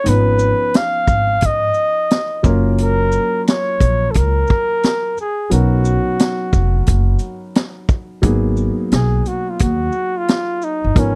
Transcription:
Already playing: C#5
0.04 G#1 D#3 B3 C#4 D#4 B4, closed hi-hat
0.09 F3 B4
0.39 shaker
0.74 F5, snare, closed hi-hat
1.07 G#1, kick, shaker
1.41 G#2, kick, closed hi-hat
1.46 D#5
1.74 shaker
2.11 snare, closed hi-hat
2.43 F#1 F#3 A#3 C#4 F4 A#4, kick, shaker
2.78 A#4, closed hi-hat
3.12 shaker
3.47 C#5, snare, closed hi-hat
3.80 A#1, kick, closed hi-hat, shaker
4.11 A4, closed hi-hat
4.15 C#2 A#4, kick
4.47 kick, shaker
4.83 snare, closed hi-hat
5.18 G#4, shaker
5.50 B1 F#3 B3 C#4 D#4 F#4 A#4, closed hi-hat
5.85 shaker
6.19 snare, closed hi-hat
6.53 F1, kick, shaker
6.86 F#1, kick, closed hi-hat
7.19 closed hi-hat, shaker
7.55 snare, closed hi-hat
7.89 kick, shaker
8.22 G#1 F#3 A#3 B3 D#4 G#4, kick, closed hi-hat
8.57 shaker
8.92 B1 G#4, snare, closed hi-hat
9.26 F#4, closed hi-hat, shaker
9.50 F4
9.59 D#2 F#4, kick, closed hi-hat
9.92 shaker
10.18 F4
10.28 snare, closed hi-hat
10.62 D#4, shaker
10.84 G1
10.95 G#1 F3 B3 C#4 D#4 A#4, kick, closed hi-hat
10.99 C#4

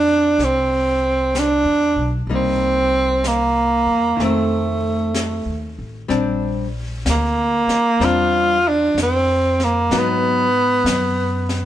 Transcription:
Already playing: F2 A3 D4 E4 G4
0.39 C2, brush sweep, snare
0.44 C4
1.35 D4, brush sweep, snare, hi-hat pedal
1.64 E2
1.96 B1
2.27 C2 G3 A#3 D#4, brush sweep
2.35 C4
3.24 A#3, brush sweep, snare, hi-hat pedal
3.86 E2
4.17 F2 D#3 A3, brush sweep, snare
4.22 A3 C4
5.14 brush sweep, snare, hi-hat pedal
5.46 D#2
5.79 A1
6.08 A#1 G3 C4 D4, brush sweep, snare
7.05 D2, snare, hi-hat pedal
7.10 A#3
7.67 muted upright bass stroke, snare
8.00 E2 G3 C4 D4, brush sweep, snare
8.05 F4
8.68 D4
8.95 F2, snare, hi-hat pedal
9.03 C4
9.60 snare
9.64 A#3
9.90 G#2 F#3 B3 D#4, brush sweep, snare
9.98 B3
10.84 F#2, snare, hi-hat pedal
11.49 snare

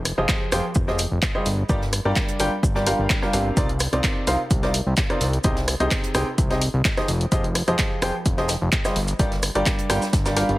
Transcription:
Already playing: F1
0.05 cross-stick, open hi-hat, shaker
0.18 F1 F3 F4 G4 G#4 C5 D#5
0.28 kick, snare, clap, shaker
0.52 F1 F3 F4 G4 G#4 C5 G5, cross-stick, open hi-hat, shaker
0.75 F1, kick, shaker
0.88 F3 F4 G4 G#4 C5 D#5, snare
0.98 open hi-hat, shaker
1.12 F1
1.22 kick, snare, clap, shaker
1.35 G3 F4 G4 G#4 C5 D#5, cross-stick
1.46 G1, open hi-hat, shaker
1.69 G1 G3 D4 F4 G4 A#4 D5, kick, shaker
1.82 snare
1.93 cross-stick, open hi-hat, shaker
2.05 G1 G3 D4 F4 G4 A#4 D5
2.15 kick, snare, clap, shaker
2.28 closed hi-hat
2.40 G1 G3 D4 F4 G4 A#4 G5, open hi-hat, shaker
2.63 G1, kick, shaker
2.75 G3 D4 F4 G4 A#4 D5, snare
2.87 G3 D4 F4 G4 A#4 F5, open hi-hat, shaker
2.99 G1
3.09 kick, snare, clap, shaker
3.22 G3 D4 F4 G4 A#4 F5, cross-stick, snare
3.33 G1 C3 D4 F4 G4 A#4 F5, open hi-hat, shaker
3.57 C2 C3 D#4 F4 A#4 C5 D5, kick, closed hi-hat, shaker
3.69 closed hi-hat
3.80 cross-stick, open hi-hat, shaker
3.93 C2 C3 D#4 F4 A#4 C5 D5, closed hi-hat
4.03 kick, snare, clap, closed hi-hat, shaker
4.27 C2 C3 D#4 F4 A#4 C5 F5, open hi-hat, shaker
4.51 C2, kick, closed hi-hat, shaker
4.63 C3 D#4 F4 A#4 C5 D5, snare, closed hi-hat
4.74 open hi-hat, shaker
4.87 C2
4.97 kick, snare, clap, closed hi-hat, shaker
5.10 C3 D#4 F4 A#4 C5 D5, cross-stick, closed hi-hat
5.21 C2, open hi-hat, shaker
5.33 closed hi-hat
5.44 C2 C3 D#4 G4 G#4 C5 D#5, kick, closed hi-hat, shaker
5.57 snare, closed hi-hat
5.68 cross-stick, open hi-hat, shaker
5.80 C2 C3 D#4 G4 G#4 C5 D#5, closed hi-hat
5.91 kick, snare, clap, closed hi-hat, shaker
6.04 closed hi-hat
6.14 C2 C3 D#4 G4 G#4 C5 G5, cross-stick, open hi-hat, shaker
6.38 C2, kick, closed hi-hat, shaker
6.51 C3 D#4 G4 G#4 C5 D#5, snare, closed hi-hat
6.62 open hi-hat, shaker
6.74 C2
6.85 kick, snare, clap, closed hi-hat, shaker
6.97 F3 D#4 G4 G#4 C5 D#5, cross-stick, snare, closed hi-hat
7.08 F1, open hi-hat, shaker
7.21 closed hi-hat
7.32 F1 F3 F4 G4 G#4 C5 D#5, kick, closed hi-hat, shaker
7.44 closed hi-hat
7.55 cross-stick, open hi-hat, shaker
7.68 F1 F3 F4 G4 G#4 C5 D#5, closed hi-hat
7.78 kick, snare, clap, closed hi-hat, shaker
8.02 F1 F3 F4 G4 G#4 C5 G5, cross-stick, open hi-hat, shaker
8.26 F1, kick, closed hi-hat, shaker
8.37 F3 F4 G4 G#4 C5 D#5, snare, closed hi-hat
8.48 snare, open hi-hat, shaker
8.62 F1
8.72 kick, clap, closed hi-hat, shaker
8.85 G3 F4 G4 G#4 C5 D#5, cross-stick, snare, closed hi-hat, shaker
8.96 G1, open hi-hat
9.07 closed hi-hat, shaker
9.19 G1 G3 D4 F4 G4 A#4 D5, kick, closed hi-hat, shaker
9.32 snare, closed hi-hat
9.43 cross-stick, open hi-hat, shaker
9.55 G1 G3 D4 F4 G4 A#4 D5, closed hi-hat
9.66 kick, snare, clap, closed hi-hat, shaker
9.79 closed hi-hat
9.90 G1 G3 D4 F4 G4 A#4 G5, cross-stick, snare, open hi-hat, shaker
10.02 snare, closed hi-hat, shaker
10.13 G1, kick, snare, closed hi-hat, shaker
10.26 G3 D4 F4 G4 A#4 D5, snare, closed hi-hat, shaker
10.36 G3 D4 F4 G4 A#4 F5, snare, open hi-hat, shaker
10.49 G1, closed hi-hat

